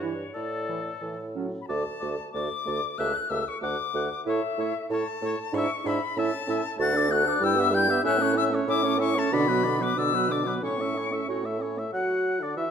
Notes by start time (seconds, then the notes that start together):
Already playing: G2
0.00 E3 E4 C#5
0.34 A2 A4 D5
0.68 E3 E4
1.01 A2 E3
1.35 F#3 C#4
1.61 B5
1.67 D2 A3 F#4 D5 A5
2.00 D2 A3 F#4 D5
2.32 D2 A3 F#4 D5 D6
2.65 D2 A3 F#4 D5
2.98 C#2 A3 G4 E5 F#6
3.30 C#2 A3 G4 E5 E6
3.48 C#6
3.61 D2 A3 F#4 F#5 D6
3.94 D2 A3 F#4 F#5
4.25 A2 A3 E4 C#5 E5
4.58 A2 A3 E4 C#5
4.90 A2 A3 E4 C#5 A5
5.22 A2 A3 E4 C#5
5.52 G#2 D4 E4 C#6
5.58 E5
5.84 G#2 D4 E4 B5
5.88 E5
6.16 A2 C#4 E4 E5 A5
6.47 A2 C#4 E4 E5
6.78 D2 A3 F#4 A6
6.82 F#5
6.94 D4 A4 D5
7.09 A3 F#4 F#5 F#6
7.24 D4 A4
7.28 D5
7.40 G2 G3 E4 E6
7.45 G5
7.56 B3 G4
7.60 E5
7.71 G3 E4 G5 G6
7.88 B3 G4 E5
8.03 A2 C#4 E4 E5 F#6
8.20 A3 C#4 C#5
8.36 C#4 E4 E5 E6
8.52 A3 C#4 C#5
8.67 A2 C#4 E4 E5 D6
8.83 A3 C#4 C#5
8.99 C#4 E4 E5 C#6
9.15 A3 C#4 C#5 A5
9.32 B2 D3 D4 D5 B5
9.48 F#3 B3 B4
9.63 D3 D4 D5
9.80 F#3 B3 B4 D6
9.96 B2 D3 D4 D5 E6
10.13 F#3 B3 B4
10.29 D3 D4 D5 D6
10.45 F#3 B3 B4
10.61 A2 C#4 E4 C#5 C#6
10.79 A3 C#4 E5
10.95 C#4 E4 C#5
11.11 A3 C#4 E5
11.28 A2 C#4 F#4 C#5
11.44 A3 E5
11.60 C#4 E4 C#5
11.78 A3 E5
11.93 F#3 F#4 F#5
12.41 D3 D4 D5
12.57 E3 E4 F#4 E5